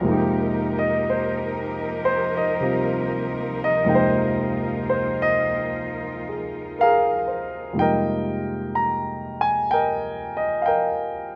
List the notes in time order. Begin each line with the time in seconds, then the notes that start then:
Already playing: A#4
0.01 F2 C3 G#3
0.06 F3 A#3 D#4 G4
0.12 G4
0.79 D#5
1.10 C5
2.05 C5
2.37 D#5
2.60 C3 G3 C4 F4
3.64 D#5
3.84 F2 C3 G#3 A#3
3.89 D#4 F4 G5
3.95 C5
4.90 C5
5.22 D#5
6.29 G#4
6.79 A#4 F5
6.83 G#4
7.28 C5
7.73 F2 C3 G#3 A#3 D#4
7.78 G3 A#4 D#5 G5
8.75 A#5
9.41 G#5
9.71 A#4 D#5 G5
10.37 D#5
10.62 F5 G5
10.68 A#4 D#5